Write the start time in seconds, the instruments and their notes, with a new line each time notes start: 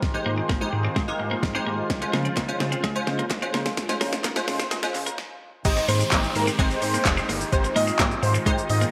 Already playing: analog synth pad D#3 G#3 C5
0.02 analog synth bass G#1, analog synth pad F4, kick, snare
0.14 synth stab G#3 D#4 G4 C5, muted clean electric guitar stroke
0.26 analog synth bass G#2, clean electric guitar A#3
0.38 clean electric guitar C4
0.49 analog synth bass G#1, clean electric guitar A#3, kick, snare
0.61 synth stab G#3 D#4 G4 C5
0.73 analog synth bass G#2, muted clean electric guitar stroke
0.85 clean electric guitar C4
0.96 analog synth bass G#1, clean electric guitar G#3, kick, snare
1.08 synth stab G#3 D#4 G4 A#4
1.19 analog synth bass G#2, muted clean electric guitar stroke
1.31 clean electric guitar A#3
1.43 analog synth bass G#1, muted clean electric guitar stroke, kick, snare
1.55 synth stab G#3 D#4 G4 C5, clean electric guitar C4
1.66 analog synth bass G#2, clean electric guitar A#3
1.90 analog synth bass C#2, analog synth pad C#3 F3, kick, snare, closed hi-hat
2.01 synth stab G#3 C#4 F4 C5, muted clean electric guitar stroke, closed hi-hat
2.13 analog synth bass C#3, clean electric guitar A#3, snare
2.25 clean electric guitar C4, closed hi-hat
2.37 analog synth bass C#2, clean electric guitar A#3, kick, snare, clap, closed hi-hat
2.48 synth stab G#3 C#4 F4 C5, closed hi-hat
2.60 analog synth bass C#3, muted clean electric guitar stroke, snare
2.72 clean electric guitar C4, closed hi-hat
2.84 analog synth bass C#2, clean electric guitar G#3, kick, snare, closed hi-hat
2.95 synth stab G#3 C#4 F4 C5, closed hi-hat
3.07 analog synth bass C#3, muted clean electric guitar stroke, snare
3.19 clean electric guitar A#3, closed hi-hat
3.30 analog synth bass C#2, muted clean electric guitar stroke, kick, snare, clap, closed hi-hat
3.42 synth stab G#3 C#4 F4 C5, clean electric guitar C4, closed hi-hat
3.54 analog synth bass C#3, clean electric guitar A#3, snare
3.66 snare, closed hi-hat
3.77 analog synth bass C#2, kick, snare, closed hi-hat, shaker
3.89 synth stab G#3 C#4 F4 C5, muted clean electric guitar stroke, snare, closed hi-hat, shaker
4.01 analog synth bass C#3, clean electric guitar A#3, snare, open hi-hat, shaker
4.13 clean electric guitar C4, snare, closed hi-hat, shaker
4.24 analog synth bass C#2, clean electric guitar A#3, kick, snare, clap, closed hi-hat, shaker
4.36 synth stab G#3 C#4 F4 C5, snare, closed hi-hat, shaker
4.48 analog synth bass C#3, muted clean electric guitar stroke, snare, open hi-hat, shaker
4.60 clean electric guitar C4, snare, closed hi-hat, shaker
4.71 analog synth bass C#2, clean electric guitar G#3, snare, closed hi-hat, shaker
4.83 synth stab G#3 C#4 F4 C5, snare, closed hi-hat, shaker
4.94 analog synth bass C#3, muted clean electric guitar stroke, clap, open hi-hat, shaker
5.06 clean electric guitar A#3, closed hi-hat, shaker
5.18 kick, snare
5.65 analog synth bass G#1, analog synth pad D#3 G#3 D#4 G4, synth stab G#3 C4 D#4 G4 C5, analog synth lead D#5, kick, closed hi-hat, crash, downlifter, shaker
5.77 muted clean electric guitar stroke, shaker
5.88 analog synth bass G#2, clean electric guitar A#3, analog synth lead C5, open hi-hat, shaker
6.00 clean electric guitar C4, shaker
6.12 analog synth bass G#1, synth stab G#3 C4 D#4 G4 C5, clean electric guitar A#3, kick, snare, clap, closed hi-hat, shaker
6.24 shaker
6.35 analog synth bass G#2, analog synth lead A#4, muted clean electric guitar stroke, open hi-hat, shaker
6.47 clean electric guitar C4, shaker
6.59 analog synth bass G#1, synth stab G#3 C4 D#4 G4 C5, clean electric guitar G#3, kick, closed hi-hat, shaker
6.71 shaker
6.82 analog synth bass G#2, analog synth lead C5, muted clean electric guitar stroke, open hi-hat, shaker
6.94 clean electric guitar A#3, shaker
7.05 analog synth bass F1, synth stab G#3 C4 D#4 G4 C5, muted clean electric guitar stroke, kick, snare, clap, closed hi-hat, shaker
7.17 clean electric guitar C4, shaker
7.29 analog synth bass G1, clean electric guitar A#3, open hi-hat, shaker
7.41 shaker
7.52 analog synth bass G#1, synth stab G#3 C4 D#4 G4 C5, analog synth pad F4, analog synth lead C5, kick, closed hi-hat, shaker
7.64 muted clean electric guitar stroke, shaker
7.76 analog synth bass G#2, clean electric guitar A#3, analog synth lead D#5, open hi-hat, shaker
7.87 clean electric guitar C4, shaker
7.99 analog synth bass G#1, synth stab G#3 C4 D#4 G4 C5, clean electric guitar A#3, kick, snare, clap, closed hi-hat, shaker
8.11 shaker
8.23 analog synth bass G#2, analog synth lead C5, muted clean electric guitar stroke, open hi-hat, shaker
8.34 clean electric guitar C4, shaker
8.46 analog synth bass G#1, clean electric guitar G#3, synth stab G#3 C4 D#4 G4 C5, kick, closed hi-hat, shaker
8.58 shaker
8.70 analog synth bass G#2, analog synth lead D#5, muted clean electric guitar stroke, open hi-hat, shaker
8.81 clean electric guitar A#3, shaker